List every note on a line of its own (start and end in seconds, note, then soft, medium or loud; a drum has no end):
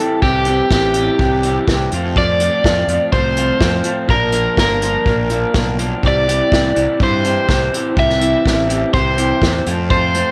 0.00 0.22 E3 medium
0.00 0.23 C4 medium
0.00 0.23 E4 medium
0.00 0.24 G4 medium
0.00 0.22 A4 medium
0.22 0.60 C2 loud
0.22 0.45 E3 medium
0.22 0.46 C4 medium
0.22 0.47 E4 medium
0.22 0.72 G4 medium
0.22 0.47 G4 medium
0.22 kick medium
0.45 0.71 E3 medium
0.45 0.72 C4 medium
0.45 0.72 E4 medium
0.45 0.73 G4 medium
0.45 closed hi-hat medium
0.70 1.08 A1 medium
0.70 0.94 E3 medium
0.70 0.96 C4 medium
0.70 0.95 E4 medium
0.70 1.90 G4 medium
0.70 0.96 G4 medium
0.70 kick medium
0.70 snare medium
0.94 1.19 E3 medium
0.94 1.19 C4 loud
0.94 1.20 E4 medium
0.94 1.21 G4 loud
0.94 closed hi-hat medium
1.19 1.57 C2 medium
1.19 1.44 E3 medium
1.19 1.44 C4 medium
1.19 1.45 E4 medium
1.19 1.46 G4 medium
1.19 kick loud
1.43 1.67 E3 medium
1.43 1.68 C4 medium
1.43 1.68 E4 medium
1.43 1.69 G4 medium
1.43 closed hi-hat medium
1.68 1.87 C2 medium
1.68 1.91 E3 medium
1.68 1.92 C4 medium
1.68 1.92 E4 medium
1.68 1.92 G4 medium
1.68 kick loud
1.68 snare loud
1.92 2.48 F2 medium
1.92 2.16 F3 medium
1.92 2.16 A3 medium
1.92 2.17 C4 medium
1.92 2.18 F4 loud
1.92 closed hi-hat medium
2.16 2.40 F3 medium
2.16 2.40 A3 loud
2.16 2.40 C4 medium
2.16 2.42 F4 loud
2.16 3.12 D5 loud
2.16 kick loud
2.40 2.64 F3 medium
2.40 2.64 A3 medium
2.40 2.64 C4 medium
2.40 2.66 F4 loud
2.40 closed hi-hat medium
2.64 2.83 F2 medium
2.64 2.88 F3 medium
2.64 2.88 A3 medium
2.64 2.88 C4 medium
2.64 2.90 F4 medium
2.64 kick loud
2.64 snare loud
2.87 2.98 F2 medium
2.87 3.11 F3 medium
2.87 3.12 A3 medium
2.87 3.12 C4 medium
2.87 3.12 F4 medium
2.87 closed hi-hat medium
3.12 3.50 C2 medium
3.12 3.36 F3 medium
3.12 3.36 A3 medium
3.12 3.37 C4 medium
3.12 3.37 F4 medium
3.12 4.10 C5 medium
3.12 kick loud
3.37 3.59 F3 medium
3.37 3.60 A3 medium
3.37 3.61 C4 loud
3.37 3.61 F4 medium
3.37 closed hi-hat medium
3.60 3.80 F2 medium
3.60 3.83 F3 medium
3.60 3.84 A3 medium
3.60 3.84 C4 medium
3.60 3.84 F4 medium
3.60 kick loud
3.60 snare loud
3.84 4.06 F3 medium
3.84 4.08 A3 medium
3.84 4.09 C4 medium
3.84 4.08 F4 medium
3.84 closed hi-hat medium
4.08 4.46 A#1 loud
4.08 4.31 F3 medium
4.08 4.31 A#3 medium
4.08 4.32 D4 loud
4.08 4.32 F4 medium
4.08 4.59 A#4 medium
4.08 kick loud
4.32 4.55 F3 medium
4.32 4.56 A#3 medium
4.32 4.57 D4 medium
4.32 4.58 F4 medium
4.32 closed hi-hat medium
4.57 4.95 G1 medium
4.57 4.80 F3 medium
4.57 4.80 A#3 medium
4.57 4.81 D4 medium
4.57 4.82 F4 medium
4.57 5.76 A#4 medium
4.57 kick loud
4.57 snare loud
4.81 5.04 F3 medium
4.81 5.05 A#3 medium
4.81 5.05 D4 medium
4.81 5.06 F4 loud
4.81 closed hi-hat medium
5.05 5.43 A#1 medium
5.05 5.29 F3 medium
5.05 5.30 A#3 medium
5.05 5.30 D4 medium
5.05 5.30 F4 medium
5.05 kick loud
5.30 5.53 F3 medium
5.30 5.53 A#3 medium
5.30 5.54 D4 medium
5.30 5.55 F4 loud
5.30 closed hi-hat medium
5.54 5.92 B1 medium
5.54 5.77 F3 medium
5.54 5.77 A#3 medium
5.54 5.78 D4 medium
5.54 5.78 F4 medium
5.54 kick loud
5.54 snare medium
5.78 6.02 F3 medium
5.78 6.02 A#3 medium
5.78 6.02 D4 medium
5.78 6.03 F4 medium
5.78 closed hi-hat medium
6.03 6.41 C2 medium
6.03 6.27 E3 medium
6.03 6.28 C4 medium
6.03 6.28 E4 medium
6.03 6.28 G4 loud
6.03 kick medium
6.08 7.03 D5 medium
6.27 6.50 E3 medium
6.27 6.50 C4 medium
6.27 6.51 E4 medium
6.27 6.52 G4 medium
6.27 closed hi-hat medium
6.50 6.71 C2 medium
6.50 6.74 E3 medium
6.50 6.75 C4 medium
6.50 6.75 E4 medium
6.50 6.76 G4 medium
6.50 kick loud
6.50 snare loud
6.75 6.86 C2 medium
6.75 6.98 E3 medium
6.75 7.00 C4 medium
6.75 7.00 E4 medium
6.75 7.00 G4 medium
6.75 closed hi-hat medium
7.00 7.37 G2 medium
7.00 7.23 E3 medium
7.00 7.24 C4 medium
7.00 7.24 E4 medium
7.00 7.25 G4 medium
7.00 7.99 C5 medium
7.00 kick loud
7.24 7.46 E3 medium
7.24 7.48 C4 medium
7.24 7.47 E4 medium
7.24 7.48 G4 loud
7.24 closed hi-hat medium
7.48 7.68 C2 medium
7.48 7.71 E3 medium
7.48 7.72 C4 medium
7.48 7.72 E4 medium
7.48 7.73 G4 medium
7.48 kick loud
7.48 snare loud
7.72 7.94 E3 medium
7.72 7.96 C4 medium
7.72 7.95 E4 medium
7.72 7.96 G4 medium
7.72 closed hi-hat medium
7.96 8.34 C2 loud
7.96 8.19 E3 medium
7.96 8.20 C4 medium
7.96 8.20 E4 medium
7.96 8.20 G4 medium
7.96 8.93 E5 loud
7.96 kick loud
8.10 snare soft
8.20 8.44 E3 medium
8.20 8.45 C4 medium
8.20 8.45 E4 medium
8.20 8.45 G4 medium
8.20 closed hi-hat medium
8.45 8.83 A1 medium
8.45 8.67 E3 medium
8.45 8.69 C4 medium
8.45 8.68 E4 medium
8.45 8.69 G4 medium
8.45 kick medium
8.45 snare medium
8.68 8.92 E3 medium
8.68 8.93 C4 medium
8.68 8.93 E4 medium
8.68 8.94 G4 medium
8.68 closed hi-hat medium
8.93 9.31 C2 medium
8.93 9.16 E3 medium
8.93 9.17 C4 medium
8.93 9.17 E4 medium
8.93 9.18 G4 medium
8.93 9.90 C5 medium
8.93 kick loud
9.17 9.41 E3 medium
9.17 9.41 C4 medium
9.17 9.42 E4 medium
9.17 9.43 G4 medium
9.17 closed hi-hat medium
9.42 9.61 E2 medium
9.42 9.65 E3 medium
9.42 9.65 C4 medium
9.42 9.66 E4 medium
9.42 9.66 G4 medium
9.42 kick medium
9.42 snare loud
9.66 10.22 F2 medium
9.66 9.88 A3 medium
9.66 9.89 C4 medium
9.66 9.91 F4 medium
9.66 closed hi-hat medium
9.90 10.13 A3 medium
9.90 10.14 C4 medium
9.90 10.15 F4 medium
9.90 10.31 C5 medium
9.90 kick loud
10.14 10.31 A3 medium
10.14 10.31 C4 medium
10.14 10.31 F4 medium
10.14 closed hi-hat medium